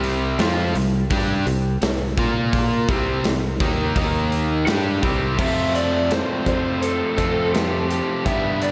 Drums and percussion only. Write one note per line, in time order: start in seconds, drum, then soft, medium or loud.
0.04 open hi-hat soft
0.39 snare loud
0.39 open hi-hat medium
0.75 open hi-hat medium
1.11 kick loud
1.11 open hi-hat medium
1.47 open hi-hat medium
1.82 snare loud
1.82 open hi-hat medium
2.18 kick loud
2.18 open hi-hat medium
2.53 kick loud
2.53 open hi-hat medium
2.89 kick loud
2.89 open hi-hat medium
3.24 snare loud
3.24 open hi-hat medium
3.60 kick loud
3.60 open hi-hat medium
3.96 kick loud
3.96 open hi-hat medium
4.32 open hi-hat soft
4.67 snare loud
4.67 open hi-hat medium
5.03 kick loud
5.03 open hi-hat medium
5.39 kick loud
5.39 crash medium
5.75 closed hi-hat medium
6.11 snare loud
6.11 closed hi-hat medium
6.46 kick medium
6.46 closed hi-hat medium
6.83 closed hi-hat medium
7.18 kick medium
7.18 closed hi-hat soft
7.55 snare loud
7.55 closed hi-hat medium
7.90 closed hi-hat medium
8.26 kick medium
8.26 closed hi-hat medium
8.62 closed hi-hat medium